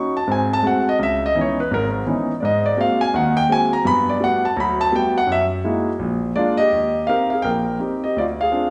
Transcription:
0.00 0.15 C#4 medium
0.00 0.15 D#4 medium
0.00 0.15 F#4 medium
0.00 0.12 C#6 loud
0.17 0.28 A5 medium
0.28 0.58 G#2 medium
0.28 0.58 C4 medium
0.32 0.51 G#5 medium
0.53 0.64 A5 loud
0.63 0.87 G#3 medium
0.63 0.87 A3 medium
0.63 0.87 C4 soft
0.63 0.87 F#4 medium
0.67 0.87 F#5 medium
0.89 0.98 D#5 medium
0.99 1.30 C#2 medium
0.99 1.01 D#5 medium
1.03 1.23 E5 loud
1.26 1.36 D#5 loud
1.35 1.59 E3 medium
1.35 1.59 B3 soft
1.35 1.59 C#4 soft
1.35 1.59 D#4 medium
1.41 1.60 C#5 medium
1.60 1.71 B4 medium
1.71 2.01 G#1 medium
1.71 2.02 G#2 medium
1.71 1.86 A#4 medium
2.06 2.30 E3 medium
2.06 2.30 B3 soft
2.06 2.30 C#4 medium
2.06 2.31 D#4 medium
2.40 2.73 G#2 medium
2.40 2.43 D5 medium
2.45 2.65 D#5 medium
2.66 2.78 D5 medium
2.77 3.01 G#3 medium
2.77 3.01 A#3 medium
2.77 3.02 C4 medium
2.77 3.02 F#4 medium
2.77 3.01 F5 loud
3.01 3.13 G#5 loud
3.14 3.44 D#2 medium
3.14 3.44 D#3 medium
3.14 3.37 F#5 medium
3.37 3.49 G5 loud
3.49 3.73 G#3 medium
3.49 3.73 A#3 medium
3.49 3.73 C4 medium
3.49 3.73 F#4 medium
3.49 3.73 G#5 loud
3.73 3.85 A#5 loud
3.85 4.16 G2 medium
3.85 4.16 B3 medium
3.85 4.08 B5 loud
4.09 4.21 D5 medium
4.20 4.44 G3 medium
4.20 4.45 A3 medium
4.20 4.45 B3 medium
4.20 4.45 F#4 medium
4.20 4.44 F#5 loud
4.45 4.57 A5 medium
4.56 4.87 D2 medium
4.56 4.87 F#3 medium
4.56 4.59 A#5 medium
4.56 4.80 B5 loud
4.81 4.93 A5 loud
4.92 5.16 G3 medium
4.92 5.16 A3 medium
4.92 5.17 B3 medium
4.92 5.17 F#4 medium
4.92 5.16 G5 loud
5.18 5.29 F#5 loud
5.27 5.58 F#2 medium
5.32 5.44 E5 loud
5.64 5.88 G#3 medium
5.64 5.88 A#3 medium
5.64 5.89 D#4 medium
5.64 5.88 E4 medium
5.64 5.89 F#4 medium
5.99 6.30 A#1 medium
6.36 6.60 G#3 medium
6.36 6.60 A#3 medium
6.36 6.60 D4 medium
6.36 6.58 F4 medium
6.36 6.59 D5 medium
6.57 7.05 G4 medium
6.57 7.09 D#5 loud
6.72 7.03 D#2 medium
7.07 7.32 C4 medium
7.07 7.32 D#4 soft
7.07 7.33 G4 medium
7.07 7.30 A#4 medium
7.07 7.28 F5 medium
7.30 7.44 G#4 medium
7.30 7.44 F5 medium
7.42 7.75 A#1 medium
7.42 7.78 A#4 medium
7.42 7.76 G5 medium
7.79 8.04 C4 medium
7.79 8.04 D#4 soft
7.79 8.03 G4 medium
8.04 8.16 G4 medium
8.04 8.17 D#5 medium
8.16 8.47 D2 medium
8.16 8.25 F4 medium
8.16 8.23 D5 medium
8.41 8.70 G#4 medium
8.41 8.70 F5 medium
8.51 8.70 C4 medium
8.51 8.70 D4 medium
8.51 8.70 F4 medium

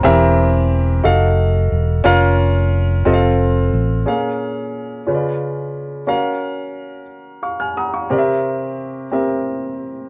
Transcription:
0.03 1.01 E1 loud
0.03 1.01 E3 medium
0.03 0.96 C4 medium
0.03 0.96 G4 medium
0.03 0.96 A#4 medium
0.03 0.96 E5 loud
1.03 1.68 F1 loud
1.03 1.96 D#4 medium
1.03 1.96 F#4 medium
1.03 1.97 A4 medium
1.03 1.97 F5 medium
1.72 2.03 E1 medium
2.04 3.02 F1 loud
2.04 2.97 C#4 medium
2.04 2.97 F4 medium
2.04 2.97 A#4 medium
2.04 2.98 F5 loud
3.05 3.69 F1 medium
3.05 3.98 C4 medium
3.05 3.98 F4 medium
3.05 3.99 A4 medium
3.05 3.13 D#5 medium
3.14 4.02 F5 medium
3.73 4.04 A1 medium
4.06 5.04 A#2 soft
4.06 4.99 C#4 medium
4.06 4.99 G#4 medium
4.06 4.99 A#4 medium
4.06 5.00 F5 medium
5.07 6.05 C#3 soft
5.07 6.00 C#4 soft
5.07 6.00 F4 soft
5.07 6.01 B4 soft
5.07 5.14 C#5 soft
5.15 6.04 D5 soft
6.07 7.01 C#4 medium
6.07 7.01 F#4 medium
6.07 7.01 A#4 medium
6.07 7.02 F5 medium
7.43 7.60 F5 soft
7.43 7.59 C#6 soft
7.60 7.77 G#5 soft
7.60 7.76 F6 soft
7.77 7.94 F#5 soft
7.77 8.09 A#5 soft
7.77 7.94 D#6 medium
7.94 8.26 F5 soft
7.94 8.26 C#6 soft
8.10 9.09 C3 medium
8.10 9.04 C4 medium
8.10 9.04 G4 medium
8.10 9.04 A#4 medium
8.10 8.18 D5 medium
8.18 9.08 E5 medium
9.12 10.05 C4 medium
9.12 10.06 G4 soft
9.12 10.06 A#4 soft
9.12 10.06 E5 medium

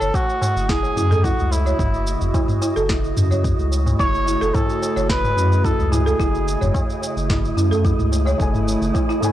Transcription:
0.00 0.11 F#1 medium
0.00 9.32 C#3 medium
0.00 9.32 A3 medium
0.00 9.32 E4 medium
0.00 8.38 F#4 medium
0.00 0.16 A4 loud
0.00 0.08 C#5 medium
0.00 9.32 D#5 medium
0.00 tabla tin soft
0.00 shaker soft
0.14 0.71 F#4 loud
0.14 kick loud
0.14 tabla na medium
0.14 shaker soft
0.30 shaker soft
0.41 mid tom medium
0.41 tabla na medium
0.41 tabla tin medium
0.41 shaker medium
0.56 0.92 F#1 medium
0.56 shaker soft
0.69 0.95 E4 medium
0.69 1.25 G#4 loud
0.69 kick loud
0.69 snare medium
0.69 shaker soft
0.83 tabla na medium
0.83 shaker soft
0.96 1.33 F#2 medium
0.96 1.10 E4 medium
0.96 tabla ge medium
0.96 shaker medium
1.11 1.23 A4 medium
1.11 mid tom medium
1.11 shaker soft
1.24 1.38 E4 loud
1.24 1.53 F#4 loud
1.24 kick loud
1.24 shaker soft
1.38 1.74 C#2 medium
1.38 tabla ge medium
1.38 shaker soft
1.51 2.62 E4 medium
1.51 tabla tin medium
1.51 shaker medium
1.66 1.74 C#5 medium
1.66 tabla tin soft
1.66 shaker soft
1.79 2.16 F#1 loud
1.79 kick loud
1.79 mid tom medium
1.79 shaker soft
1.94 shaker soft
2.07 shaker medium
2.21 2.31 F#1 loud
2.21 tabla tin soft
2.21 tabla ge medium
2.21 shaker soft
2.34 2.60 E4 medium
2.34 kick loud
2.34 tabla na medium
2.34 shaker soft
2.48 mid tom medium
2.48 shaker soft
2.62 2.75 E4 medium
2.62 tabla na medium
2.62 tabla tin medium
2.62 shaker medium
2.76 3.12 F#1 medium
2.76 2.88 A4 loud
2.76 shaker soft
2.89 3.03 E4 loud
2.89 kick loud
2.89 snare medium
2.89 shaker soft
3.04 shaker soft
3.16 3.53 F#2 medium
3.16 mid tom medium
3.16 shaker medium
3.31 3.39 C#5 medium
3.31 tabla ge medium
3.31 shaker soft
3.44 kick loud
3.44 shaker soft
3.59 3.94 C#2 medium
3.59 shaker soft
3.71 tabla tin medium
3.71 shaker medium
3.86 mid tom medium
3.86 tabla na medium
3.86 tabla tin soft
3.86 shaker soft
3.99 4.36 F#1 medium
3.99 4.26 E4 medium
3.99 4.56 C#5 loud
3.99 kick loud
3.99 shaker soft
4.14 shaker soft
4.27 4.40 E4 medium
4.27 shaker medium
4.41 4.51 F#1 loud
4.41 4.53 A4 loud
4.41 tabla tin soft
4.41 shaker soft
4.54 4.68 E4 medium
4.54 5.09 A4 loud
4.54 kick loud
4.54 mid tom medium
4.54 tabla na medium
4.54 shaker soft
4.69 shaker soft
4.82 tabla na medium
4.82 tabla tin medium
4.82 shaker medium
4.96 5.32 F#1 medium
4.96 5.04 C#5 medium
4.96 shaker soft
5.09 5.66 B4 loud
5.09 kick loud
5.09 snare medium
5.09 shaker soft
5.24 mid tom medium
5.24 tabla na medium
5.24 shaker soft
5.37 5.73 F#2 medium
5.37 tabla ge medium
5.37 shaker medium
5.52 shaker soft
5.64 5.91 E4 medium
5.64 5.93 A4 loud
5.64 kick loud
5.64 shaker soft
5.78 6.14 C#2 medium
5.78 tabla ge medium
5.78 shaker soft
5.92 6.05 E4 medium
5.92 7.02 G#4 medium
5.92 mid tom medium
5.92 tabla tin medium
5.92 shaker medium
6.06 6.18 A4 loud
6.06 tabla tin soft
6.06 shaker soft
6.19 6.56 F#1 loud
6.19 6.33 E4 loud
6.19 kick loud
6.19 shaker soft
6.35 shaker soft
6.48 shaker medium
6.61 6.71 F#1 medium
6.61 6.69 C#5 medium
6.61 mid tom medium
6.61 tabla tin soft
6.61 tabla ge medium
6.61 shaker soft
6.74 kick medium
6.74 tabla na medium
6.74 shaker soft
6.90 shaker soft
7.02 tabla na medium
7.02 tabla tin soft
7.02 shaker medium
7.16 7.52 F#1 medium
7.16 shaker soft
7.30 7.56 E4 medium
7.30 kick loud
7.30 snare medium
7.30 mid tom medium
7.30 shaker soft
7.45 shaker soft
7.57 7.93 F#2 medium
7.57 7.70 E4 medium
7.57 shaker medium
7.71 7.83 A4 medium
7.71 tabla ge medium
7.71 shaker soft
7.85 7.98 E4 loud
7.85 kick loud
7.85 shaker soft
7.99 8.35 C#2 medium
7.99 mid tom medium
7.99 shaker soft
8.12 tabla tin medium
8.12 shaker medium
8.25 8.34 C#5 medium
8.25 tabla na medium
8.25 tabla tin soft
8.25 shaker soft
8.38 8.76 F#1 medium
8.38 9.18 A3 medium
8.38 9.19 E4 medium
8.38 9.20 G#5 medium
8.38 kick loud
8.38 shaker soft
8.54 mid tom medium
8.54 shaker soft
8.68 shaker medium
8.81 8.91 F#1 medium
8.81 tabla tin soft
8.81 shaker soft
8.94 9.08 E4 medium
8.94 kick loud
8.94 tabla na medium
8.94 shaker soft
9.09 9.21 E4 loud
9.09 shaker soft
9.20 9.32 A3 medium
9.20 9.32 E4 medium
9.20 mid tom medium
9.20 tabla na medium
9.20 tabla tin medium
9.20 shaker medium
9.25 9.32 G#5 medium

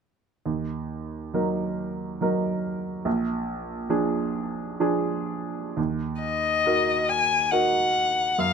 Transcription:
0.46 1.32 D#2 soft
1.34 2.17 F#3 soft
1.34 2.18 D#4 soft
1.34 2.18 A#4 soft
2.21 3.02 F#3 soft
2.21 3.02 D#4 soft
2.21 3.02 A#4 soft
3.05 3.87 A#1 soft
3.90 4.77 F3 soft
3.90 4.77 D4 soft
3.90 4.77 G#4 soft
4.80 5.73 F3 soft
4.80 5.73 D4 soft
4.80 5.73 G#4 soft
5.77 6.63 D#2 soft
6.21 7.11 D#5 soft
6.66 7.48 D#4 soft
6.66 7.48 F#4 soft
6.66 7.49 A#4 soft
7.09 7.52 G#5 soft
7.51 8.34 D#4 soft
7.51 8.35 F#4 soft
7.51 8.35 A#4 soft
7.51 8.41 F#5 soft
8.38 8.53 F#2 soft
8.38 8.53 F5 medium

